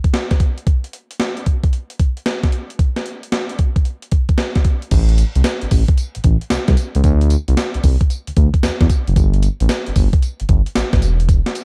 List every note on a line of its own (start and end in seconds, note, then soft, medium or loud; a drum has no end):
0.04 kick medium
0.04 closed hi-hat soft
0.14 snare loud
0.14 closed hi-hat medium
0.31 kick medium
0.31 snare medium
0.31 closed hi-hat medium
0.40 kick loud
0.40 closed hi-hat medium
0.58 closed hi-hat medium
0.67 kick loud
0.67 closed hi-hat medium
0.84 closed hi-hat medium
0.93 closed hi-hat medium
1.11 closed hi-hat medium
1.20 snare loud
1.20 closed hi-hat medium
1.37 closed hi-hat soft
1.46 kick medium
1.46 closed hi-hat medium
1.64 kick medium
1.64 closed hi-hat soft
1.73 closed hi-hat medium
1.90 closed hi-hat soft
1.99 kick medium
1.99 closed hi-hat medium
2.17 closed hi-hat soft
2.26 snare loud
2.26 closed hi-hat medium
2.43 kick medium
2.43 snare medium
2.43 closed hi-hat medium
2.52 closed hi-hat medium
2.70 closed hi-hat soft
2.79 kick loud
2.79 closed hi-hat medium
2.96 snare medium
2.96 closed hi-hat medium
3.06 closed hi-hat medium
3.23 closed hi-hat soft
3.32 snare loud
3.32 closed hi-hat medium
3.49 closed hi-hat medium
3.59 kick medium
3.59 closed hi-hat medium
3.76 kick medium
3.76 closed hi-hat soft
3.85 closed hi-hat medium
4.02 closed hi-hat soft
4.12 kick medium
4.12 closed hi-hat medium
4.29 kick medium
4.29 closed hi-hat soft
4.38 snare loud
4.38 closed hi-hat medium
4.55 kick medium
4.55 snare medium
4.55 closed hi-hat medium
4.65 kick medium
4.65 closed hi-hat medium
4.82 closed hi-hat soft
4.91 5.23 A1 loud
4.91 kick loud
4.91 closed hi-hat medium
4.91 crash loud
4.91 tambourine medium
5.09 closed hi-hat medium
5.18 closed hi-hat medium
5.18 tambourine medium
5.35 5.42 C2 loud
5.35 closed hi-hat medium
5.44 snare loud
5.44 closed hi-hat medium
5.44 tambourine medium
5.62 5.66 A1 soft
5.62 closed hi-hat medium
5.71 5.84 A1 loud
5.71 kick medium
5.71 open hi-hat medium
5.71 tambourine medium
5.88 kick loud
5.88 closed hi-hat medium
5.97 closed hi-hat medium
5.97 tambourine medium
6.15 6.20 A1 medium
6.15 closed hi-hat medium
6.24 6.37 A1 medium
6.24 kick loud
6.24 closed hi-hat medium
6.41 closed hi-hat soft
6.50 6.58 C2 medium
6.50 snare loud
6.50 closed hi-hat medium
6.50 tambourine medium
6.68 6.75 C2 loud
6.68 kick loud
6.68 snare medium
6.68 closed hi-hat medium
6.77 closed hi-hat medium
6.77 tambourine medium
6.95 7.02 C#2 loud
6.95 closed hi-hat medium
7.04 7.36 D2 loud
7.04 kick loud
7.04 closed hi-hat medium
7.04 tambourine medium
7.21 closed hi-hat medium
7.30 closed hi-hat medium
7.30 tambourine medium
7.48 7.55 C2 medium
7.48 closed hi-hat medium
7.57 snare loud
7.57 closed hi-hat medium
7.57 tambourine medium
7.74 7.79 C2 soft
7.74 closed hi-hat medium
7.84 7.96 C2 medium
7.84 kick medium
7.84 open hi-hat medium
7.84 tambourine medium
8.01 kick medium
8.01 closed hi-hat medium
8.10 closed hi-hat medium
8.10 tambourine medium
8.27 8.31 D2 medium
8.27 closed hi-hat medium
8.37 8.49 D2 loud
8.37 kick loud
8.37 closed hi-hat medium
8.54 kick medium
8.54 closed hi-hat soft
8.63 8.70 E2 medium
8.63 snare loud
8.63 closed hi-hat medium
8.63 tambourine loud
8.81 8.87 E2 loud
8.81 kick loud
8.81 snare medium
8.81 closed hi-hat medium
8.90 kick loud
8.90 closed hi-hat medium
8.90 tambourine medium
9.07 9.14 F#1 medium
9.07 closed hi-hat medium
9.16 9.48 G1 loud
9.16 kick loud
9.16 closed hi-hat medium
9.16 tambourine medium
9.34 closed hi-hat medium
9.42 closed hi-hat medium
9.42 tambourine medium
9.60 9.67 A1 medium
9.60 closed hi-hat medium
9.69 snare loud
9.69 closed hi-hat medium
9.69 tambourine loud
9.86 9.91 G1 soft
9.86 closed hi-hat medium
9.96 10.09 G1 loud
9.96 kick medium
9.96 open hi-hat medium
9.96 tambourine medium
10.13 kick loud
10.13 closed hi-hat medium
10.22 closed hi-hat medium
10.22 tambourine medium
10.40 10.44 G1 medium
10.40 closed hi-hat medium
10.49 10.62 G1 loud
10.49 kick loud
10.49 closed hi-hat medium
10.66 closed hi-hat soft
10.75 10.83 A1 soft
10.75 snare loud
10.75 closed hi-hat medium
10.75 tambourine loud
10.93 11.04 A1 loud
10.93 kick loud
10.93 snare medium
10.93 closed hi-hat medium
11.02 11.41 E1 loud
11.02 closed hi-hat medium
11.02 tambourine medium
11.20 closed hi-hat medium
11.29 kick loud
11.29 closed hi-hat medium
11.29 tambourine medium
11.46 snare medium
11.46 closed hi-hat medium
11.55 closed hi-hat medium
11.55 tambourine medium